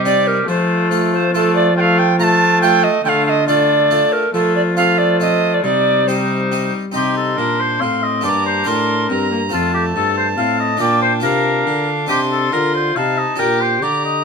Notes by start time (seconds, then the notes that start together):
Already playing: C3 G3 G4
0.04 C4 D#4 G4 D5
0.27 A#4
0.48 F3 A3 F4 C5
0.91 A3 F4 A4
1.13 C5
1.33 A3 F4 A4
1.55 D5
1.76 A3 F4 F5 G5
1.98 G5
2.19 A3 F4 A4 A#5
2.23 A5
2.61 A3 F4 A4 G5
2.83 D#5
3.04 D3 A3 F4 G5
3.08 F5
3.25 D#5 F5
3.47 A3 D4 F4 A4 D5
3.91 D4 F4 A4
4.12 A#4
4.33 F3 A3 F4 A4
4.55 D5
4.76 A3 C4 F4 A4 F5
4.98 D5
5.20 C4 F4 A4 D#5
5.54 D5
5.64 C3 G3 D#4 D5
6.07 G3 C4 D#4 G4 C5
6.52 C4 D#4 G4
6.92 C3 C4 D#4 G4 C6
6.96 G4
7.17 A4
7.37 A#2 D4 A#4
7.60 C5
7.80 A2 C4 F5
8.03 D#5
8.21 G2 A#3 D4 G4 D5 C6
8.29 A#5
8.46 C5
8.64 A2 D4 G4 A#4 C6
9.09 G2 C4 A#5
9.31 A#3
9.49 F2 A3 C4 F4 A4 A5
9.74 G4
9.95 G2 A4
10.17 C5
10.38 A2 C4 F5
10.60 D#5
10.77 A#2 D4 F4 A#4 G5
10.81 D5
11.02 C5
11.20 C3 D4 F4 A#4 F5
11.67 D3
12.07 C3 C4 G4 D#5 C6
12.31 A4
12.52 D3 F4 A#4
12.75 C5
12.96 C3 D#4 F5 A5
13.18 D#5
13.36 A#2 D4 G4 A#4 G5
13.61 C5
13.82 D3 G4 D5 A#5
14.05 D#5